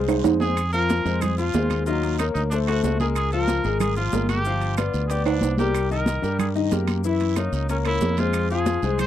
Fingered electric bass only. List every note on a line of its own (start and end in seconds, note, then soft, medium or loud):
0.00 0.21 C2 medium
0.25 1.00 F2 medium
1.05 1.51 F2 medium
1.54 2.30 D#2 medium
2.35 2.80 D2 medium
2.84 3.59 C#2 medium
3.65 4.10 G#1 medium
4.13 4.88 G1 medium
4.94 5.39 D2 medium
5.42 6.18 C2 medium
6.23 6.69 G2 medium
6.72 7.47 F#2 medium
7.52 7.98 C#2 medium
8.01 8.77 F2 medium
8.83 9.07 C2 medium